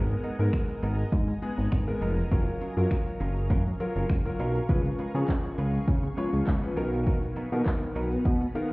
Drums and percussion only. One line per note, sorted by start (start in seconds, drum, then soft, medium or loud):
0.10 shaker medium
0.24 closed hi-hat soft
0.24 shaker soft
0.40 shaker medium
0.53 finger snap loud
0.53 kick loud
0.53 closed hi-hat medium
0.53 shaker medium
0.69 shaker soft
0.83 closed hi-hat medium
0.83 shaker medium
0.99 shaker medium
1.12 kick loud
1.12 closed hi-hat medium
1.12 shaker medium
1.28 shaker medium
1.42 closed hi-hat medium
1.42 shaker medium
1.58 shaker medium
1.72 finger snap loud
1.72 kick loud
1.72 closed hi-hat medium
1.72 shaker medium
1.88 shaker soft
2.02 closed hi-hat medium
2.02 shaker medium
2.18 shaker medium
2.32 kick loud
2.32 closed hi-hat medium
2.32 shaker medium
2.48 shaker medium
2.61 closed hi-hat medium
2.61 shaker soft
2.78 shaker medium
2.91 finger snap loud
2.91 kick loud
2.91 closed hi-hat medium
2.91 shaker medium
3.07 shaker soft
3.21 closed hi-hat medium
3.21 shaker medium
3.37 shaker medium
3.50 kick loud
3.50 closed hi-hat medium
3.50 shaker medium
3.66 shaker medium
3.80 closed hi-hat medium
3.80 shaker medium
3.96 shaker medium
4.10 finger snap loud
4.10 kick loud
4.10 closed hi-hat medium
4.10 shaker medium
4.25 shaker soft
4.39 closed hi-hat medium
4.39 shaker medium
4.55 shaker medium
4.69 kick loud
4.69 closed hi-hat medium
4.69 shaker medium
4.85 shaker medium
4.99 closed hi-hat soft
4.99 shaker soft
5.15 shaker medium
5.28 kick loud
5.28 clap loud
5.28 closed hi-hat medium
5.28 shaker medium
5.44 shaker soft
5.58 closed hi-hat medium
5.58 shaker medium
5.74 shaker medium
5.88 kick loud
5.88 closed hi-hat medium
5.88 shaker medium
6.04 shaker medium
6.18 closed hi-hat medium
6.18 shaker medium
6.33 shaker medium
6.47 kick loud
6.47 clap loud
6.47 closed hi-hat medium
6.47 shaker medium
6.63 shaker soft
6.77 closed hi-hat medium
6.77 shaker medium
6.93 shaker medium
7.07 kick loud
7.07 closed hi-hat medium
7.07 shaker medium
7.22 shaker medium
7.37 closed hi-hat soft
7.37 shaker soft
7.53 shaker medium
7.66 kick loud
7.66 clap loud
7.66 closed hi-hat medium
7.66 shaker medium
7.82 shaker soft
7.96 closed hi-hat medium
7.96 shaker medium
8.12 shaker medium
8.25 kick loud
8.25 closed hi-hat medium
8.25 shaker medium
8.41 shaker medium
8.55 closed hi-hat medium
8.55 shaker medium